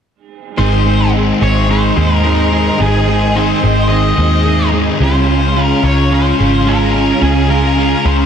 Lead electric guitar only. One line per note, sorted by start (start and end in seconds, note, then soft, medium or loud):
0.58 1.10 C5 medium
1.43 1.70 C#5 medium
1.71 2.16 C5 medium
2.16 2.24 A#4 medium
2.24 2.81 A#4 medium
2.82 3.38 G#4 medium
3.36 3.88 C5 medium
3.89 4.69 D#5 loud
5.03 5.64 C5 loud
5.64 5.85 A#4 loud
5.85 6.13 C#5 medium
6.14 6.70 C5 loud
6.68 7.23 A#4 medium
7.23 7.50 G#4 medium
7.50 8.07 A#4 medium
8.06 8.26 C5 medium